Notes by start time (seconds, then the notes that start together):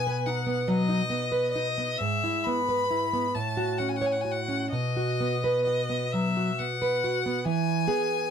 Already playing: B2 B3 G#5
0.07 B4
0.26 D#4 F#5
0.47 B3
0.68 F#3 D#5
0.89 D#4
1.10 B3
1.32 B4
1.52 D#4 D#5
1.78 B3
1.98 G#2 E5
2.24 E4
2.44 B3 B5
2.69 B4
2.91 E4
3.13 B3
3.35 A2 A5
3.57 F#4
3.78 C#4 F#5
3.89 G#5
3.97 F#5
4.02 C#5
4.06 G#5
4.13 F#5
4.21 F#4 G#5
4.32 F#5
4.49 C#4
4.72 B2 D#5
4.97 F#4
5.21 B3
5.44 B4
5.65 F#4 D#5
5.90 B3
6.12 F#3 E5
6.37 F#4
6.59 B3 F#5
6.82 B4
7.04 F#4
7.26 B3
7.45 E3 G#5
7.87 B3 G#4